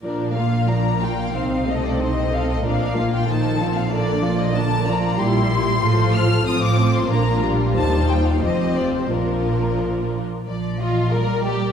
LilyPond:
<<
  \new Staff \with { instrumentName = "Violin section" } { \time 2/4 \key bes \major \tempo 4 = 92 r8 f''8 bes''8 g''8 | f''8 ees''16 d''16 ees''8 f''16 ees''16 | f''8. g''16 a''8. f''16 | d''8. ees''16 a''8 bes''8 |
c'''4. f'''8 | ees'''16 d'''8 c'''16 bes''8 r8 | a''8 g''16 f''16 ees''8 d''16 c''16 | bes'4. r8 |
d''8 ees''8 d''4 | }
  \new Staff \with { instrumentName = "Violin section" } { \time 2/4 \key bes \major << { d''8 f''8 d''8 f''8 | c''8 ees''8 c''8 ees''8 | d''8 f''8 c''8 a'8 | bes'8 d''8 bes'8 d''8 |
g'4 c''4 | c''4 bes'4 | c''4 c''4 | bes'4. r8 |
r8 f'8 bes'8 g'8 | } \\ { bes'8 f'8 bes'8 f'8 | c''8 a'8 c''8 a'8 | bes'8 f'8 a'8 f'8 | d'8 f'8 d'8 f'8 |
g'8 g'8 a'4 | f'2~ | f'4 g'4 | f'4. r8 |
r2 | } >> }
  \new Staff \with { instrumentName = "Viola section" } { \time 2/4 \key bes \major << { d'8 f'8 d'8 f'8 | ees'8 c'8 ees'8 c'8 | d'8 f'8 ees'8 c'8 | d'8 bes8 d'8 bes8 |
e'4 f'4 | c'4 d'4 | ees'4 c'4 | d'4. r8 |
r8 f'8 bes'8 g'8 | } \\ { f8 bes8 f8 bes8 | c'8 a8 c'8 a8 | f8 bes8 ees8 f8 | d8 f8 d8 f8 |
g4 f4 | f4 bes8 g8~ | g4 f4 | f4. r8 |
r2 | } >> }
  \new Staff \with { instrumentName = "Cello section" } { \clef bass \time 2/4 \key bes \major bes,2 | c2 | bes,2~ | bes,2 |
bes,4 a,4 | a,4 bes,4 | ees,4 f,4 | bes,4. r8 |
f4 g4 | }
  \new Staff \with { instrumentName = "Double bass section" } { \clef bass \time 2/4 \key bes \major bes,,2 | c,2 | bes,,2~ | bes,,2 |
bes,,4 a,,4 | a,,4 bes,,4 | ees,4 f,,4 | bes,,4. r8 |
bes,,2 | }
>>